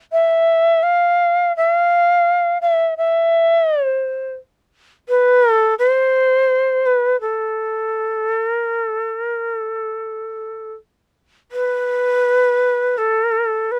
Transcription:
0.12 0.84 E5 medium
0.83 1.55 F5 medium
1.57 1.71 E5 medium
1.71 2.58 F5 medium
2.62 2.94 E5 medium
2.97 3.88 E5 medium
3.88 4.33 C5 medium
5.09 5.51 B4 medium
5.51 5.75 A4 medium
5.79 6.88 C5 medium
6.86 7.20 B4 medium
7.21 8.46 A4 medium
8.46 8.79 A#4 medium
8.79 9.16 A4 medium
9.16 9.50 A#4 medium
9.50 10.73 A4 medium
11.52 12.99 B4 loud
12.98 13.73 A4 medium
13.72 13.79 B4 medium

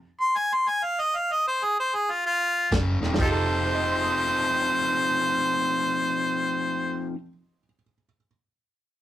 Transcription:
0.21 0.38 C6 loud
0.37 0.55 G#5 medium
0.53 0.70 C6 medium
0.69 0.85 G#5 medium
0.83 1.02 F5 loud
1.01 1.18 D#5 medium
1.17 1.34 F5 medium
1.32 1.46 D#5 loud
1.48 1.65 C5 medium
1.64 1.78 G#4 medium
1.80 1.97 C5 medium
1.95 2.12 G#4 medium
2.11 2.25 F4 medium
2.26 2.71 F4 loud
2.71 2.95 F#1 medium
2.71 2.99 F#2 medium
2.71 2.99 C#3 medium
2.71 kick medium
2.71 snare loud
2.71 closed hi-hat medium
3.02 3.15 E1 medium
3.02 3.17 F#2 medium
3.02 3.18 D#3 medium
3.02 snare medium
3.06 7.02 F2 medium
3.13 7.08 F3 medium
3.13 snare medium
3.18 7.11 F1 medium
3.18 7.14 F3 medium
3.18 7.15 C4 medium
3.18 7.14 D#4 medium
3.18 7.16 D#4 medium
3.18 3.28 G4 medium
3.18 3.28 A4 medium
3.18 7.13 C5 loud
3.18 kick loud
3.18 crash medium
3.22 7.21 G4 medium
3.22 7.18 A4 loud
3.31 7.27 A4 medium
3.66 7.58 C5 soft
3.74 7.65 D#5 soft
3.82 7.74 G5 soft
3.91 7.82 C6 soft
4.01 7.93 D#6 soft
4.23 8.15 C7 soft
4.36 8.27 D#7 soft

